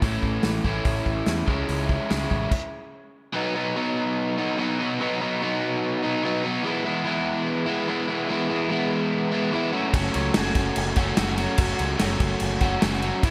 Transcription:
0.02 A1 A2 E3 A3 C#4 E4, kick, open hi-hat
0.23 A1, kick
0.43 A1, snare, open hi-hat
0.64 A1 A2 E3 A3 C#4 E4, kick
0.85 A1, kick, open hi-hat
1.06 A1, kick
1.26 E2, snare, open hi-hat
1.47 C#2 C#3 G#3 C#4 E4, kick
1.69 C#2, open hi-hat
1.89 kick
2.09 C#2 C#3 G#3 C#4 E4, snare, open hi-hat
2.31 A1, kick
2.51 kick, crash
3.33 B2 F#3 B3 D#4
3.55 F#3 B3 D#4
3.75 B2 F#3 B3 D#4
4.38 F#3 B3 D#4
4.57 B2 F#3 B3 D#4
4.79 F#3 B3 D#4
5.00 B2 F#3 B3 D#4
5.21 F#3 B3 D#4
5.42 B2 F#3 B3 D#4
6.03 F#3 B3 D#4
6.23 B2 F#3 B3 D#4
6.44 F#3 B3 D#4
6.64 E3 G#3 B3 E4
6.84 G#3 B3 E4
7.04 E3 G#3 B3 E4
7.66 G#3 B3 E4
7.88 E3 G#3 B3 E4
8.08 G#3 B3 E4
8.29 E3 G#3 B3 E4
8.49 G#3 B3 E4
8.69 E3 G#3 B3 E4
9.31 G#3 B3 E4
9.52 E3 G#3 B3 E4
9.73 F#3 A3 C#4 F#4
9.93 F#1 F#3 A3 C#4 F#4, kick, crash
10.13 C#2 A3 C#4 F#4, crash
10.34 F#1 F#3 A3 C#4 F#4, snare, crash
10.55 F#1, kick, crash
10.76 F#1, crash
10.96 F#1 A3 C#4 F#4, kick, crash
11.17 F#1 F#3 A3 C#4 F#4, snare, crash
11.38 A3 C#4 F#4, crash
11.58 F#1 F#3 A3 C#4 F#4, kick, crash
11.79 C#2 A3 C#4 F#4, crash
11.98 F#1 F#3 A3 C#4 F#4, snare, crash
12.20 F#1, kick, crash
12.40 F#1, crash
12.60 F#1 A3 C#4 F#4, kick, crash
12.81 F#1 F#3 A3 C#4 F#4, snare, crash
12.93 snare
13.02 A3 C#4 F#4, crash
13.23 A1 A2 E3 A3 C#4 E4, kick, crash

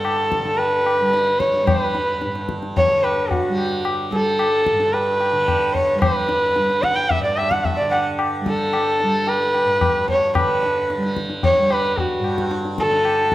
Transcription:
Already playing: G2 D3 G3 A4
0.05 tabla na
0.32 tabla ke
0.39 D3
0.45 tabla te
0.58 B4, tabla tin
0.86 tabla na
1.01 G3
1.13 tabla te
1.27 tabla te
1.40 C#5, tabla ke
1.54 tabla te
1.63 G3
1.67 B4, tabla na, tabla ge
1.95 tabla te
2.21 G2, tabla te
2.35 tabla te
2.49 tabla ke
2.63 tabla te
2.77 C#5, tabla tin, tabla ge
2.86 D3
3.04 B4, tabla na
3.31 F#4, tabla tin, tabla ge
3.49 G3
3.58 tabla na
3.85 tabla na
4.11 G3 A4, tabla ke
4.39 tabla na
4.66 tabla ke
4.72 G2
4.80 tabla te
4.93 B4, tabla tin
5.20 tabla na
5.32 D3
5.48 tabla na, tabla ge
5.74 C#5, tabla ge
5.95 G3
6.01 B4, tabla na, tabla ge
6.29 tabla te
6.56 G3, tabla te
6.70 tabla te
6.83 F#5, tabla ke
6.96 G5, tabla te
7.10 E5, tabla tin, tabla ge
7.19 G2
7.23 D5
7.37 E5, tabla na
7.51 F#5, tabla ke
7.65 E5, tabla tin, tabla ge
7.75 D5 E5
7.81 D3
7.91 F#5, tabla na
8.19 tabla na
8.41 G3
8.46 A4, tabla ke
8.73 tabla na
9.00 G3, tabla te
9.27 B4, tabla tin
9.54 tabla na
9.65 G2
9.81 tabla na, tabla ge
10.08 C#5, tabla ge
10.35 D3 B4, tabla na, tabla ge
10.63 tabla te
10.90 tabla te
10.97 G3
11.03 tabla te
11.17 tabla ke
11.30 tabla te
11.43 C#5, tabla tin, tabla ge
11.59 G3
11.70 B4, tabla na
11.97 F#4, tabla tin, tabla ge
12.20 G2
12.24 tabla na
12.38 tabla ke
12.51 tabla te
12.65 tabla te
12.78 D3 A4, tabla ke
12.92 tabla te
13.05 tabla na
13.32 tabla ke

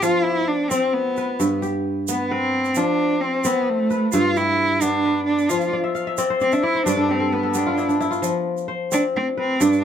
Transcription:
Already playing: B3 G4 B4
0.02 F3 F4, shaker
0.25 E4
0.48 D4
0.70 C4, shaker
0.93 B3
1.17 B4, shaker
1.40 G2, shaker
1.62 G4, shaker
2.08 B3, shaker
2.31 C4 B4
2.65 shaker
2.75 F3 D4 F4, shaker
3.21 C4
3.44 B3 C4, shaker
3.69 A3
3.90 B4, shaker
4.12 G2 F4, shaker
4.36 E4 G4, shaker
4.81 B3 D4, shaker
5.05 B4
5.26 D4
5.39 shaker
5.49 F3 F4, shaker
5.61 shaker
5.73 D5
5.84 E5
5.95 F5, shaker
6.07 E5
6.18 C4 D5, shaker
6.30 C5
6.40 C4 D5, shaker
6.52 D4 E5, shaker
6.63 E4 D5
6.75 C5
6.86 G2 D4 B4, shaker
6.97 A4
7.09 C4 G4
7.20 A4
7.32 B3 B4
7.43 A4
7.54 B3 D4 G4, shaker
7.67 F4
7.78 E4, shaker
7.89 D4, shaker
8.00 E4, shaker
8.11 F4, shaker
8.22 F3, shaker
8.57 shaker
8.68 C5
8.92 C4 D4, shaker
9.16 C4
9.37 C4 B4
9.60 G2 D4, shaker
9.72 shaker

